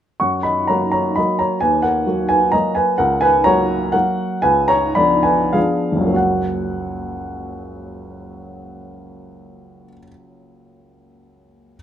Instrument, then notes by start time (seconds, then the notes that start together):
upright piano
0.20 F#2 F#5 C#6
0.43 D#5 B5
0.68 F#3 A#3 F#4 C#5 A#5
0.92 C#5 A#5
1.16 F#3 A#3 F#4 D#5 B5
1.39 C#5 A#5
1.61 D#2 B4 G#5
1.82 A#4 F#5
2.07 F#3 A#3 F#4
2.29 B4 G#5
2.52 F#3 A#3 F#4 D#5 A#5
2.75 B4 G#5
2.98 C#2 A#4 F#5
3.21 B4 G#5
3.44 F#3 A#3 F#4 C#5 A#5
3.92 F#3 A#3 F#4 A#4 F#5
4.42 C#2 B4 G#5
4.68 C#5 A#5
4.95 F3 B3 D4 D5 B5
5.23 B4 G#5
5.53 F3 B3 D4 G#4 F5
5.92 F#1
5.96 C#2
6.01 F#3
6.05 A#3
6.09 C#4
6.14 F#4 F#5